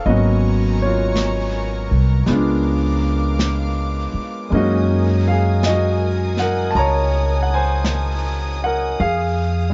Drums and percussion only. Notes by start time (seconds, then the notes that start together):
0.04 brush sweep
1.15 brush sweep, snare, hi-hat pedal
2.26 brush sweep, snare
3.39 brush sweep, snare, hi-hat pedal
4.51 brush sweep
5.63 brush sweep, snare, hi-hat pedal
6.37 snare
6.74 brush sweep
7.85 brush sweep, snare, hi-hat pedal
8.97 brush sweep